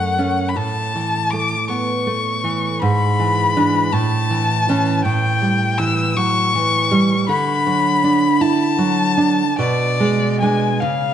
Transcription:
0.00 0.54 F#2 medium
0.00 0.17 A3 soft
0.00 0.50 F#5 medium
0.18 0.53 A3 soft
0.18 0.53 C#4 soft
0.49 0.58 B5 soft
0.56 2.78 A2 medium
0.56 1.32 A5 medium
0.95 1.55 E3 soft
1.31 1.92 A3 soft
1.31 1.69 D6 medium
1.68 2.06 B3 soft
1.68 2.81 C#6 medium
2.07 2.67 A3 soft
2.44 2.82 E3 soft
2.82 3.89 G#2 medium
2.82 3.94 B5 medium
3.20 3.55 E3 soft
3.57 3.89 E3 soft
3.57 3.89 D4 soft
3.92 5.01 A2 medium
3.92 5.04 A5 medium
4.30 4.68 E3 soft
4.69 5.01 E3 medium
4.69 5.02 C#4 medium
5.05 7.25 A2 medium
5.05 5.80 G5 medium
5.42 6.01 G3 medium
5.78 6.16 E3 soft
5.78 6.18 E6 medium
6.17 6.54 F#3 soft
6.17 7.28 C#6 loud
6.55 7.14 E3 soft
6.91 7.28 G3 medium
7.29 9.54 D3 medium
7.29 8.43 B5 loud
7.67 8.26 F#3 medium
8.04 8.64 D4 soft
8.41 8.79 E4 medium
8.41 9.58 A5 medium
8.78 9.41 F#3 soft
9.17 9.58 D4 medium
9.59 10.78 B2 medium
9.59 10.39 D5 medium
10.00 10.41 G#3 medium
10.40 10.78 G#3 soft
10.40 10.78 D4 soft
10.40 10.81 G#5 medium
10.80 11.14 C#3 medium
10.80 11.14 F5 medium

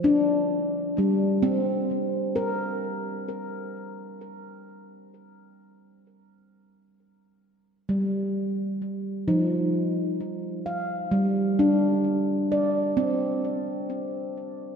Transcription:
0.00 1.14 F3 medium
0.04 1.61 D4 medium
0.98 3.54 G3 medium
1.43 3.99 C4 medium
2.36 4.92 A#4 medium
7.89 9.46 G3 medium
9.28 11.31 F3 medium
9.28 11.84 D#4 medium
10.66 12.69 F5 soft
11.11 13.68 G3 medium
11.59 13.16 D4 medium
12.52 14.76 D5 medium
12.97 14.76 C4 medium

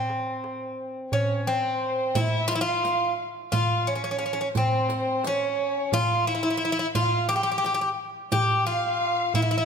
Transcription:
0.00 1.42 C4 medium
0.10 darbuka tek medium
0.44 darbuka tek medium
0.79 darbuka ka soft
1.12 1.48 C#4 medium
1.12 1.44 C#5 medium
1.12 darbuka dum medium
1.47 2.18 C4 medium
1.47 2.16 C5 medium
2.15 2.47 E4 medium
2.15 2.64 E5 medium
2.15 riq medium
2.15 darbuka dum medium
2.48 2.55 F4 medium
2.48 riq medium
2.48 darbuka tek medium
2.55 2.61 E4 medium
2.61 3.13 F4 loud
2.61 3.19 F5 medium
2.83 riq soft
2.83 darbuka tek medium
3.52 3.88 F4 medium
3.52 3.84 F5 medium
3.52 riq medium
3.52 darbuka dum medium
3.87 3.94 C#4 medium
3.87 4.56 C#5 medium
3.95 4.03 C#4 medium
4.04 4.10 C#4 medium
4.11 4.17 C#4 medium
4.19 4.25 C#4 medium
4.19 riq soft
4.26 4.32 C#4 medium
4.33 4.40 C#4 medium
4.41 4.48 C#4 medium
4.55 5.27 C4 medium
4.55 5.24 C5 medium
4.55 riq medium
4.55 darbuka dum medium
4.89 riq soft
4.89 darbuka tek medium
5.24 5.96 C#4 medium
5.24 5.92 C#5 medium
5.24 riq medium
5.24 darbuka tek medium
5.92 6.27 F4 loud
5.92 6.27 F5 medium
5.92 riq medium
5.92 darbuka dum medium
6.26 6.33 E4 medium
6.26 6.95 E5 medium
6.35 6.42 E4 medium
6.43 6.49 E4 medium
6.50 6.56 E4 medium
6.57 6.64 E4 medium
6.57 riq soft
6.65 6.71 E4 medium
6.72 6.78 E4 medium
6.79 6.87 E4 medium
6.95 7.28 F4 medium
6.95 7.27 F5 medium
6.95 riq medium
6.95 darbuka dum medium
7.29 7.35 G4 medium
7.29 7.94 G5 medium
7.29 riq soft
7.29 darbuka tek medium
7.36 7.42 G4 medium
7.43 7.51 G4 medium
7.52 7.57 G4 medium
7.58 7.65 G4 medium
7.63 7.73 G4 medium
7.63 riq soft
7.63 darbuka tek medium
7.74 7.80 G4 medium
7.81 7.88 G4 medium
8.32 8.66 G4 loud
8.32 8.64 G5 medium
8.32 riq medium
8.32 darbuka dum medium
8.66 9.34 F4 medium
8.66 9.35 F5 medium
9.34 9.41 E4 medium
9.34 9.65 E5 medium
9.34 riq soft
9.34 darbuka dum medium
9.42 9.50 E4 medium
9.51 9.56 E4 medium
9.58 9.64 E4 medium

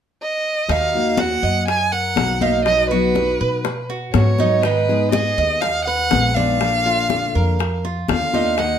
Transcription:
0.22 0.73 D#5 medium
0.69 1.39 D#2 medium
0.69 0.93 D#3 medium
0.69 0.93 A#3 medium
0.69 1.17 D#4 medium
0.69 0.94 D#4 medium
0.69 0.93 F#4 medium
0.69 1.22 F5 medium
0.69 high bongo medium
0.69 high conga soft
0.93 1.18 A#3 medium
0.93 1.19 D#4 medium
0.93 1.18 F#4 medium
0.93 high conga soft
1.18 1.67 D#3 soft
1.18 1.67 A#3 soft
1.18 1.68 D#4 soft
1.18 1.43 F#4 medium
1.18 1.68 F#4 medium
1.18 1.67 F#5 loud
1.18 high bongo medium
1.18 high conga medium
1.42 2.13 F#2 medium
1.42 1.91 D#5 medium
1.42 high conga soft
1.67 1.94 G#5 loud
1.67 muted steel-string acoustic guitar stroke medium
1.67 high bongo medium
1.67 high conga soft
1.92 2.40 A#4 medium
1.92 2.43 F#5 loud
1.92 high conga soft
2.16 3.34 B1 medium
2.16 2.41 D#3 soft
2.16 2.41 A#3 soft
2.16 2.41 D#4 soft
2.16 2.42 F#4 medium
2.16 high bongo medium
2.16 low bongo medium
2.16 high conga medium
2.41 2.67 A#3 soft
2.41 2.90 D#4 medium
2.41 2.67 D#4 medium
2.41 2.66 F#4 medium
2.41 2.65 F5 medium
2.41 high conga medium
2.65 2.91 B2 medium
2.65 2.91 F#3 medium
2.65 2.91 B3 medium
2.65 2.90 D#4 medium
2.65 2.90 F#4 medium
2.65 2.89 D#5 loud
2.65 high bongo medium
2.65 high conga soft
2.90 3.15 F#3 medium
2.90 3.16 B3 medium
2.90 3.15 D#4 medium
2.90 3.39 F#4 medium
2.90 3.15 F#4 medium
2.90 3.85 B4 medium
2.90 high bongo soft
2.90 high conga soft
3.15 3.63 F#3 soft
3.15 3.64 B3 soft
3.15 3.64 D#4 medium
3.15 3.64 F#4 medium
3.15 high bongo medium
3.15 high conga medium
3.41 4.11 B2 medium
3.41 3.89 B4 medium
3.65 muted steel-string acoustic guitar stroke medium
3.65 high bongo medium
3.65 high conga soft
3.90 4.38 F#4 medium
3.90 high bongo soft
3.90 high conga soft
4.13 5.31 G#2 medium
4.13 4.38 F#3 soft
4.13 4.39 B3 soft
4.13 4.38 D#4 medium
4.13 4.37 F#4 soft
4.13 4.64 C#5 medium
4.13 high bongo medium
4.13 low bongo medium
4.13 high conga medium
4.38 4.64 F#3 medium
4.38 4.64 B3 medium
4.38 4.63 D#4 medium
4.38 4.63 F#4 medium
4.38 high bongo soft
4.38 high conga medium
4.63 4.88 D#3 medium
4.63 4.88 G#3 medium
4.63 4.88 B3 medium
4.63 5.12 D#4 medium
4.63 4.88 D#4 medium
4.63 4.88 G#4 medium
4.63 5.11 B4 medium
4.63 high bongo medium
4.63 high conga soft
4.88 5.12 G#3 medium
4.88 5.13 B3 medium
4.88 5.13 D#4 medium
4.88 5.13 G#4 medium
4.88 high conga soft
5.12 5.62 G#3 soft
5.12 5.62 B3 soft
5.12 5.62 D#4 soft
5.12 5.38 G#4 medium
5.12 5.63 G#4 soft
5.12 5.63 D#5 medium
5.12 high bongo medium
5.12 high conga medium
5.38 6.08 D#2 medium
5.38 5.86 D#5 medium
5.38 high conga soft
5.61 5.84 F5 loud
5.61 muted steel-string acoustic guitar stroke medium
5.61 high bongo medium
5.61 high conga soft
5.85 6.35 B4 medium
5.85 6.36 F#5 loud
5.85 high conga soft
6.11 7.29 A#1 medium
6.11 6.35 G#3 soft
6.11 6.36 B3 soft
6.11 6.36 D#4 soft
6.11 6.35 G#4 soft
6.11 high bongo medium
6.11 low bongo medium
6.11 high conga medium
6.35 6.60 G#3 medium
6.35 6.61 B3 medium
6.35 6.84 D4 medium
6.35 6.61 D#4 medium
6.35 6.60 G#4 medium
6.35 7.84 F5 loud
6.35 high conga medium
6.61 6.85 D3 medium
6.61 6.85 A#3 medium
6.61 6.85 D4 medium
6.61 6.84 F4 medium
6.61 high bongo medium
6.61 high conga soft
6.85 7.09 A#3 medium
6.85 7.09 D4 medium
6.85 7.09 F4 medium
6.85 7.34 F4 medium
6.85 high bongo soft
6.85 high conga soft
7.10 7.58 D3 soft
7.10 7.58 A#3 soft
7.10 7.59 D4 soft
7.10 7.59 F4 soft
7.10 high bongo medium
7.10 high conga medium
7.35 8.05 F2 medium
7.35 7.83 A#4 medium
7.59 muted steel-string acoustic guitar stroke medium
7.59 high bongo medium
7.59 high conga soft
7.84 8.33 F4 medium
7.84 high bongo soft
7.84 high conga soft
8.08 8.79 D#2 medium
8.08 8.33 D3 soft
8.08 8.33 A#3 soft
8.08 8.33 D4 soft
8.08 8.32 F4 soft
8.08 8.60 F5 medium
8.08 high bongo medium
8.08 low bongo medium
8.08 high conga medium
8.33 8.58 A#3 soft
8.33 8.58 D4 medium
8.33 8.57 D#4 medium
8.33 8.57 F4 medium
8.33 high bongo soft
8.33 high conga medium
8.58 8.79 D#3 medium
8.58 8.79 A#3 medium
8.58 8.79 D#4 medium
8.58 8.79 F#4 medium
8.58 8.79 F#5 medium
8.58 high bongo medium
8.58 high conga soft

